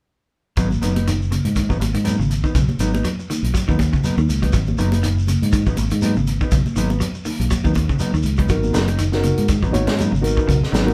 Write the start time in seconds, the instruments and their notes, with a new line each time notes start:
0.57 fingered electric bass G#1, clean electric guitar F#3 B3 D#4, kick, closed hi-hat, shekere
0.70 muted clean electric guitar stroke, high conga, shekere
0.82 fingered electric bass F#1, clean electric guitar D#3 F#3 B3 D#4, closed hi-hat, shekere
0.95 clean electric guitar B3 D#4, closed hi-hat, high conga, shekere
1.07 clean electric guitar D#3, closed hi-hat, shekere
1.20 muted clean electric guitar stroke, shekere
1.31 clean electric guitar C#3, muted clean electric guitar stroke, closed hi-hat, high conga, shekere
1.45 fingered electric bass G#2, muted clean electric guitar stroke, closed hi-hat, high conga, shekere
1.56 clean electric guitar D#3, muted clean electric guitar stroke, kick, closed hi-hat, shekere
1.69 fingered electric bass G#1, clean electric guitar F#3 B3 D#4, kick, shekere
1.80 fingered electric bass G#1, muted clean electric guitar stroke, closed hi-hat, high conga, shekere
1.94 fingered electric bass G#2, clean electric guitar D#3, closed hi-hat, shekere
2.04 clean electric guitar F#3 B3 D#4, closed hi-hat, high conga, shekere
2.18 fingered electric bass G#1, clean electric guitar C#3, muted clean electric guitar stroke, shekere
2.30 muted clean electric guitar stroke, closed hi-hat, shekere
2.44 clean electric guitar D#3 B3 D#4, kick, shekere
2.55 fingered electric bass B1, clean electric guitar C#3, kick, closed hi-hat, shekere
2.69 muted clean electric guitar stroke, high conga, shekere
2.79 fingered electric bass G#1, clean electric guitar D#3 F#3 B3 D#4, closed hi-hat, shekere
2.94 clean electric guitar B3 D#4, high conga, shekere
3.05 clean electric guitar F#3, closed hi-hat, shekere
3.19 muted clean electric guitar stroke, shekere
3.30 clean electric guitar D#3, muted clean electric guitar stroke, closed hi-hat, high conga, shekere
3.43 fingered electric bass B1, muted clean electric guitar stroke, closed hi-hat, shekere
3.54 clean electric guitar F#3, muted clean electric guitar stroke, kick, closed hi-hat, shekere
3.68 fingered electric bass D#2, clean electric guitar D#3 F#3 B3 D#4, kick, high conga, shekere
3.79 muted clean electric guitar stroke, kick, closed hi-hat, high conga, shekere
3.93 clean electric guitar C#3, kick, shekere
4.04 clean electric guitar F#3 B3 D#4, closed hi-hat, high conga, shekere
4.18 fingered electric bass D#2, clean electric guitar D#3, muted clean electric guitar stroke, high conga, shekere
4.29 fingered electric bass C#2, muted clean electric guitar stroke, closed hi-hat, shekere
4.42 clean electric guitar F#3 B3 D#4, kick, closed hi-hat, shekere
4.53 fingered electric bass G#1, clean electric guitar F#3, kick, closed hi-hat, shekere
4.66 muted clean electric guitar stroke, high conga, shekere
4.78 fingered electric bass F#1, clean electric guitar D#3 F#3 B3 D#4, closed hi-hat, shekere
4.92 clean electric guitar B3 D#4, closed hi-hat, high conga, shekere
5.03 clean electric guitar D#3, closed hi-hat, shekere
5.17 muted clean electric guitar stroke, shekere
5.27 clean electric guitar C#3, muted clean electric guitar stroke, closed hi-hat, high conga, shekere
5.42 fingered electric bass G#2, muted clean electric guitar stroke, closed hi-hat, shekere
5.52 clean electric guitar D#3, muted clean electric guitar stroke, kick, closed hi-hat, shekere
5.66 fingered electric bass G#1, clean electric guitar F#3 B3 D#4, kick, shekere
5.77 fingered electric bass G#1, muted clean electric guitar stroke, closed hi-hat, high conga, shekere
5.90 fingered electric bass G#2, clean electric guitar D#3, closed hi-hat, shekere
6.01 clean electric guitar F#3 B3 D#4, closed hi-hat, high conga, shekere
6.16 fingered electric bass G#1, clean electric guitar C#3, muted clean electric guitar stroke, shekere
6.27 muted clean electric guitar stroke, closed hi-hat, shekere
6.41 clean electric guitar D#3 B3 D#4, kick, shekere
6.51 fingered electric bass B1, clean electric guitar C#3, kick, closed hi-hat, shekere
6.66 muted clean electric guitar stroke, high conga, shekere
6.76 fingered electric bass G#1, clean electric guitar D#3 F#3 B3 D#4, closed hi-hat, shekere
6.90 clean electric guitar B3, muted clean electric guitar stroke, high conga, shekere
7.00 clean electric guitar F#3, closed hi-hat, shekere
7.14 muted clean electric guitar stroke, shekere
7.25 clean electric guitar D#3, muted clean electric guitar stroke, open hi-hat, high conga, shekere
7.40 fingered electric bass B1, muted clean electric guitar stroke, closed hi-hat, high conga, shekere
7.51 clean electric guitar F#3, muted clean electric guitar stroke, kick, closed hi-hat, shekere
7.64 fingered electric bass D#2, clean electric guitar D#3 F#3 B3 D#4, kick, high conga, shekere
7.74 muted clean electric guitar stroke, kick, closed hi-hat, high conga, shekere
7.89 clean electric guitar C#3, kick, shekere
7.99 clean electric guitar F#3 B3 D#4, closed hi-hat, high conga, shekere
8.13 fingered electric bass D#2, clean electric guitar D#3, muted clean electric guitar stroke, shekere
8.23 fingered electric bass C#2, muted clean electric guitar stroke, closed hi-hat, shekere
8.37 clean electric guitar F#3 B3 D#4, kick, closed hi-hat, shekere
8.49 fingered electric bass G#1, clean electric guitar F#3, reed electric piano B3 D#4 F#4 A#4, kick, closed hi-hat, shekere
8.63 muted clean electric guitar stroke, high conga, shekere
8.73 fingered electric bass F#1, clean electric guitar D#3 F#3 B3 D#4, snare, closed hi-hat, shekere
8.88 clean electric guitar D#4, muted clean electric guitar stroke, closed hi-hat, high conga, shekere
8.98 clean electric guitar D#3, closed hi-hat, shekere
9.12 reed electric piano B3 D#4 F#4 A#4, muted clean electric guitar stroke, snare, shekere
9.23 clean electric guitar C#3, muted clean electric guitar stroke, closed hi-hat, high conga, shekere
9.38 fingered electric bass G#2, muted clean electric guitar stroke, closed hi-hat, shekere
9.48 clean electric guitar D#3, muted clean electric guitar stroke, kick, closed hi-hat, shekere
9.63 fingered electric bass G#1, clean electric guitar F#3 B3 D#4, kick, shekere
9.71 fingered electric bass G#1, reed electric piano B3 D#4 F#4 C#5, muted clean electric guitar stroke, closed hi-hat, high conga, shekere
9.87 fingered electric bass G#2, clean electric guitar D#3, snare, closed hi-hat, shekere
9.98 clean electric guitar F#3 B3 D#4, closed hi-hat, high conga, shekere
10.12 fingered electric bass G#1, clean electric guitar C#3, muted clean electric guitar stroke, shekere
10.22 reed electric piano B3 D#4 F#4 A#4, muted clean electric guitar stroke, closed hi-hat, shekere
10.37 clean electric guitar D#3 B3 D#4, kick, shekere
10.48 fingered electric bass B1, clean electric guitar C#3, kick, closed hi-hat, shekere
10.62 muted clean electric guitar stroke, snare, shekere
10.72 fingered electric bass G#1, clean electric guitar D#3 F#3 B3 D#4, snare, closed hi-hat, shekere
10.86 reed electric piano B3 D#4 F#4 A#4, clean electric guitar B3 D#4, high conga, shekere